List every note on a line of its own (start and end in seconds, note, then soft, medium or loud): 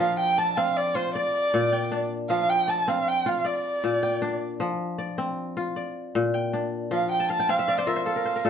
0.00 1.20 F3 medium
0.00 1.29 D4 medium
0.00 0.18 F4 medium
0.00 1.08 A#4 medium
0.00 0.43 F5 medium
0.00 0.18 F5 medium
0.19 0.40 G5 medium
0.38 1.15 D5 medium
0.38 0.59 A5 medium
0.57 2.37 C4 medium
0.57 0.78 F5 medium
0.77 0.98 D5 medium
0.95 2.46 F4 medium
0.95 1.14 C5 medium
1.14 2.06 D5 medium
1.14 2.26 D5 medium
1.54 2.35 A#2 medium
1.72 2.66 G5 medium
1.92 3.59 D4 medium
2.30 3.50 F3 medium
2.30 2.51 F5 medium
2.49 2.71 G5 medium
2.68 3.44 D5 medium
2.68 2.90 A5 medium
2.88 4.68 C4 medium
2.88 3.10 F5 medium
3.08 3.30 G5 medium
3.26 4.77 F4 medium
3.26 3.48 F5 medium
3.45 4.55 D5 medium
3.45 4.42 D5 medium
3.84 4.65 A#2 medium
4.03 4.96 G5 medium
4.22 5.90 D4 medium
4.60 5.81 F3 medium
4.98 5.76 D5 medium
5.18 6.98 C4 medium
5.57 7.08 F4 medium
5.76 6.87 D5 medium
6.15 6.96 A#2 medium
6.34 7.27 G5 medium
6.53 8.21 D4 medium
6.91 8.12 F3 medium
6.91 7.10 F5 medium
7.12 7.29 G5 medium
7.20 7.93 A5 medium
7.30 7.49 F5 medium
7.30 7.52 A5 medium
7.39 8.33 G5 medium
7.49 8.50 C4 medium
7.49 8.49 F5 medium
7.49 7.79 F5 medium
7.59 7.93 E5 medium
7.68 8.50 D5 medium
7.78 7.96 C5 medium
7.78 7.89 D5 medium
7.87 8.50 F4 medium
7.87 8.12 A#4 medium
7.87 8.06 E5 medium
7.96 8.25 C5 medium
8.06 8.42 A4 medium
8.06 8.50 F5 medium
8.16 8.35 A#4 medium
8.25 8.50 C5 medium
8.36 8.50 A#4 medium
8.45 8.50 A#2 medium
8.45 8.50 A4 medium